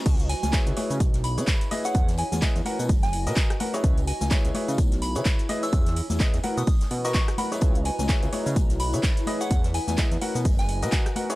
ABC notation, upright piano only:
X:1
M:4/4
L:1/16
Q:"Swing 16ths" 1/4=127
K:B
V:1 name="Upright piano"
z4 [EGBc]2 [EGBc] z4 [EGBc]3 [EGBd] [EGBc]- | [EGBc] z3 [EGBd] z [FABf] z4 [FABd] [FABd] z [FABf] [EGBc]- | [EGBc] z3 [EGBc]2 [EGBc] z4 [EGBc]3 [EGBd] [EGBc]- | [EGBc] z3 [EGBd] z [FABf] z4 [FABd] [FABd] z [FABf] [EGBc]- |
[EGBc] z3 [EGBc]2 [EGBc] z4 [EGBc]3 [EGBd] [EGBc]- | [EGBc] z3 [EGBd] z [FABf] z4 [FABd] [FA] z [FABf] [EGBc] |]